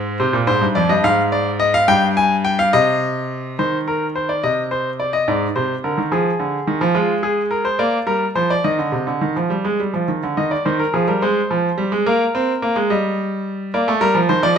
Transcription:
0.00 0.17 G#2 medium
0.00 0.17 C5 medium
0.20 0.34 C3 medium
0.20 0.37 C5 medium
0.33 0.47 A#2 medium
0.47 0.61 G#2 medium
0.47 0.65 C5 medium
0.61 0.75 G2 medium
0.75 0.89 F2 medium
0.75 0.89 D5 medium
0.89 1.03 G2 medium
0.89 1.03 D#5 medium
1.04 1.86 G#2 medium
1.04 1.21 F5 loud
1.32 1.50 D5 medium
1.60 1.74 D#5 medium
1.74 1.88 F5 loud
1.88 2.70 G2 medium
1.88 2.06 G5 loud
2.17 2.34 G#5 medium
2.45 2.58 G5 medium
2.59 2.73 F5 loud
2.73 3.56 C3 medium
2.73 3.56 D#5 loud
3.59 4.41 D#3 medium
3.59 3.76 C5 medium
3.88 4.05 A#4 medium
4.16 4.29 C5 medium
4.29 4.43 D5 medium
4.44 5.26 C3 medium
4.44 4.61 D#5 medium
4.71 4.89 C5 medium
5.00 5.13 D5 medium
5.13 5.27 D#5 medium
5.28 5.45 G#2 medium
5.28 5.45 D5 medium
5.56 5.73 C3 medium
5.56 5.73 C5 medium
5.84 5.98 D3 medium
5.84 6.01 A#4 medium
5.98 6.11 D#3 medium
6.12 6.29 F3 medium
6.12 6.93 G#4 medium
6.40 6.57 D3 medium
6.67 6.81 D#3 medium
6.81 6.95 F3 medium
6.95 7.77 G#3 medium
6.95 7.12 F4 medium
7.23 7.41 G#4 medium
7.51 7.65 A#4 medium
7.65 7.79 C5 medium
7.79 7.97 A#3 medium
7.79 7.97 D5 medium
8.06 8.24 G3 medium
8.06 8.25 A#4 medium
8.35 8.53 F3 medium
8.35 8.50 C5 medium
8.50 8.64 D5 medium
8.64 8.78 D#3 medium
8.64 10.04 D#5 medium
8.79 8.93 D3 medium
8.92 9.06 C3 medium
9.07 9.21 D3 medium
9.21 9.35 D#3 medium
9.36 9.50 F3 medium
9.50 9.64 G3 medium
9.65 9.78 G#3 medium
9.80 9.93 G3 medium
9.94 10.07 F3 medium
10.08 10.22 D#3 medium
10.23 10.36 D3 medium
10.37 10.55 D#3 medium
10.37 10.50 D#5 medium
10.51 10.64 D5 medium
10.65 10.83 D#3 medium
10.65 10.79 C5 medium
10.79 10.93 A#4 medium
10.94 11.07 F3 medium
10.94 11.07 G#4 medium
11.08 11.21 G3 medium
11.08 11.21 A#4 medium
11.22 11.40 G#3 medium
11.22 12.03 C5 medium
11.51 11.68 F3 medium
11.78 11.91 G3 medium
11.92 12.05 G#3 medium
12.06 12.23 A#3 medium
12.06 12.87 A#4 medium
12.35 12.52 C4 medium
12.62 12.75 A#3 medium
12.76 12.89 G#3 medium
12.90 13.71 G3 medium
12.90 13.71 D#5 medium
13.74 13.87 A#3 medium
13.74 13.91 D5 medium
13.88 14.01 A3 medium
14.01 14.14 G3 medium
14.01 14.18 A#4 loud
14.15 14.28 F3 medium
14.29 14.42 D#3 medium
14.29 14.42 C5 medium
14.43 14.56 F3 medium
14.43 14.56 D5 medium

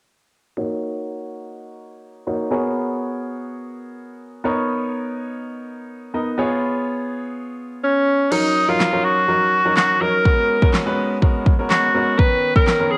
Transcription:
0.57 2.23 A#3 medium
0.57 2.23 D#4 medium
0.57 2.24 F#4 medium
0.57 2.24 C#5 medium
2.27 2.51 A#3 soft
2.27 2.51 D#4 soft
2.27 2.49 F#4 soft
2.27 2.50 C#5 medium
2.51 4.41 B3 medium
2.51 4.41 F#4 medium
2.51 4.41 G#4 medium
2.51 4.41 A#4 medium
2.51 4.41 C#5 medium
4.44 6.10 B3 medium
4.44 6.10 D#4 medium
4.44 6.11 A#4 medium
4.44 6.11 C#5 medium
6.14 6.36 B3 medium
6.14 6.38 D#4 soft
6.14 6.38 A#4 soft
6.14 6.38 D#5 medium
6.38 8.28 B3 medium
6.38 8.28 F4 medium
6.38 8.28 G#4 medium
6.38 8.28 C#5 medium
7.84 8.33 C#4 medium
8.31 8.62 F#3 medium
8.31 8.62 C#4 medium
8.31 8.70 D#4 medium
8.31 8.62 D#4 medium
8.31 8.62 A#4 medium
8.31 crash medium
8.68 8.88 F#3 medium
8.68 8.88 C#4 medium
8.68 8.89 D#4 medium
8.68 9.06 F4 medium
8.68 8.89 A#4 medium
8.80 snare loud
8.80 clap loud
8.93 9.22 F#3 medium
8.93 9.23 C#4 medium
8.93 9.23 D#4 medium
8.93 9.23 A#4 medium
9.04 9.76 F#4 medium
9.28 9.59 F#3 medium
9.28 9.59 C#4 medium
9.28 9.59 D#4 medium
9.28 9.59 A#4 medium
9.65 9.95 F#3 medium
9.65 9.95 C#4 medium
9.65 9.95 D#4 medium
9.65 9.95 A#4 medium
9.77 10.03 F#4 loud
9.77 snare medium
9.77 clap loud
10.01 10.21 F#3 medium
10.01 10.21 C#4 medium
10.01 10.21 D#4 medium
10.01 10.74 A#4 loud
10.01 10.21 A#4 medium
10.25 10.56 G#3 medium
10.25 10.56 B3 medium
10.25 10.56 C#4 medium
10.25 10.56 F#4 medium
10.25 10.56 A#4 medium
10.25 kick loud
10.62 10.82 G#3 medium
10.62 10.82 B3 medium
10.62 10.82 C#4 medium
10.62 10.82 F#4 medium
10.62 10.82 A#4 medium
10.62 kick medium
10.74 snare medium
10.74 clap loud
10.86 11.16 G#3 medium
10.86 11.16 B3 medium
10.86 11.16 C#4 medium
10.86 11.16 F#4 medium
10.86 11.16 B4 loud
11.22 11.52 G#3 medium
11.22 11.52 B3 medium
11.22 11.52 C#4 medium
11.22 11.52 F#4 medium
11.22 11.53 A#4 medium
11.22 kick medium
11.46 kick loud
11.59 11.89 G#3 medium
11.59 11.89 B3 medium
11.59 11.89 C#4 medium
11.59 11.89 F#4 medium
11.59 11.89 A#4 medium
11.70 12.20 F#4 medium
11.70 snare medium
11.70 clap loud
11.94 12.15 G#3 medium
11.94 12.15 B3 medium
11.94 12.15 C#4 medium
11.94 12.15 F#4 medium
11.94 12.15 A#4 medium
12.19 12.49 D#3 medium
12.19 12.49 B3 medium
12.19 12.49 C#4 medium
12.19 12.55 B4 medium
12.19 12.49 A#5 medium
12.19 kick loud
12.56 12.75 D#3 medium
12.56 12.76 B3 medium
12.56 12.76 C#4 medium
12.56 12.93 A#4 medium
12.56 12.76 A#4 medium
12.56 kick medium
12.67 snare medium
12.67 clap loud
12.80 12.98 D#3 medium
12.80 12.98 B3 medium
12.80 12.98 C#4 medium
12.80 12.98 A#4 medium
12.91 12.98 G#4 medium

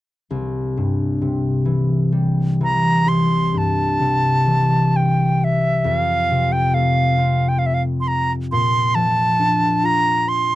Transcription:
0.31 3.05 C2 soft
0.77 1.29 G2 soft
1.21 3.11 C3 soft
1.65 2.59 E3 soft
2.12 3.11 G3 soft
2.61 3.11 E3 soft
2.61 3.10 A#5 medium
3.06 5.89 C2 soft
3.06 3.59 C6 medium
3.54 4.04 G2 soft
3.58 4.98 A5 medium
4.00 5.89 C3 soft
4.46 5.89 E3 soft
4.96 5.46 G5 soft
5.44 5.88 E5 medium
5.84 8.57 F2 soft
5.84 6.54 F5 medium
6.30 8.57 C3 soft
6.52 6.76 G5 medium
6.74 8.58 A3 soft
6.74 7.50 F5 medium
7.18 10.18 C4 soft
7.48 7.60 G5 medium
7.59 7.68 F5 medium
7.66 7.76 E5 medium
7.74 7.82 F5 soft
8.00 8.09 C6 medium
8.08 8.32 A#5 medium
8.52 10.55 A#2 medium
8.52 8.96 C6 medium
8.95 10.55 F3 soft
8.95 9.87 A5 medium
9.39 10.55 D4 soft
9.84 10.55 F4 soft
9.84 10.30 A#5 medium
10.29 10.55 C6 medium

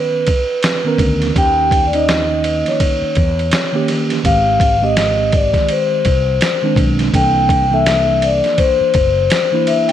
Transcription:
0.00 0.31 D#3 medium
0.00 0.28 B3 medium
0.00 0.29 C#4 medium
0.00 0.29 B4 medium
0.00 0.97 B4 medium
0.27 kick medium
0.27 ride medium
0.63 snare loud
0.63 hi-hat pedal medium
0.63 ride medium
0.84 1.30 D#3 medium
0.84 1.31 B3 medium
0.84 1.31 C#4 medium
0.84 1.32 A#4 loud
0.98 1.32 D2 medium
0.98 kick loud
0.98 ride medium
1.22 snare soft
1.22 ride soft
1.34 2.62 D#2 loud
1.34 1.85 D#3 medium
1.34 1.86 A#3 medium
1.34 1.86 C#4 medium
1.34 1.87 G4 medium
1.34 1.83 G5 loud
1.34 kick medium
1.34 ride medium
1.71 kick loud
1.71 ride medium
1.86 1.94 D5 medium
1.92 3.16 D#3 medium
1.92 3.17 A#3 medium
1.92 3.17 C#4 medium
1.92 3.18 D#4 medium
1.92 2.69 D#5 medium
1.92 ride soft
2.09 snare loud
2.09 hi-hat pedal medium
2.09 ride medium
2.44 ride medium
2.66 3.86 C#5 medium
2.66 snare soft
2.66 ride soft
2.80 kick medium
2.80 ride medium
3.02 muted fretless electric bass stroke soft
3.15 3.50 E2 loud
3.15 kick medium
3.15 ride medium
3.39 ride soft
3.51 snare loud
3.51 hi-hat pedal medium
3.51 ride medium
3.73 4.19 D#3 medium
3.73 4.19 A#3 medium
3.73 4.20 C#4 medium
3.73 4.20 G4 medium
3.88 snare soft
3.88 ride medium
4.10 snare soft
4.10 ride medium
4.23 5.51 G#1 medium
4.23 4.74 D#3 medium
4.23 4.75 G#3 medium
4.23 4.75 C4 medium
4.23 4.75 G4 medium
4.23 4.79 F5 loud
4.23 kick medium
4.23 ride medium
4.60 kick loud
4.60 ride medium
4.81 6.05 D#3 medium
4.81 6.06 G#3 medium
4.81 6.06 C4 medium
4.81 6.07 G4 medium
4.81 5.30 D#5 medium
4.97 snare loud
4.97 hi-hat pedal soft
4.97 ride medium
5.32 5.67 D5 medium
5.32 kick medium
5.32 ride medium
5.54 kick medium
5.54 snare soft
5.54 ride soft
5.69 6.74 C5 medium
5.69 ride medium
6.05 6.39 C2 medium
6.05 kick loud
6.05 ride medium
6.41 snare loud
6.41 hi-hat pedal medium
6.41 ride medium
6.62 7.08 D#3 medium
6.62 7.08 G#3 medium
6.62 7.09 C4 medium
6.62 7.09 D4 medium
6.76 7.10 B1 medium
6.76 kick loud
6.76 ride medium
6.99 snare soft
6.99 ride soft
7.12 8.40 C2 loud
7.12 7.63 E3 medium
7.12 7.64 A#3 medium
7.12 7.64 D4 medium
7.12 7.65 A4 medium
7.12 7.74 G5 loud
7.12 kick loud
7.12 ride medium
7.49 kick loud
7.49 ride medium
7.71 8.95 E3 medium
7.71 8.95 A#3 medium
7.71 8.96 D4 medium
7.71 8.96 A4 medium
7.71 8.24 E5 medium
7.86 snare loud
7.86 hi-hat pedal soft
7.86 ride medium
8.22 8.56 D5 medium
8.22 ride medium
8.44 snare soft
8.44 ride soft
8.58 9.70 C5 medium
8.58 kick medium
8.58 ride medium
8.81 muted fretless electric bass stroke soft
8.94 9.28 F#1 medium
8.94 kick loud
8.94 ride medium
9.30 snare loud
9.30 hi-hat pedal medium
9.30 ride medium
9.52 9.92 E3 medium
9.52 9.92 A#3 medium
9.52 9.92 D4 medium
9.52 9.92 E4 medium
9.67 9.88 E5 medium
9.67 ride medium
9.88 9.92 G5 loud
9.88 ride medium

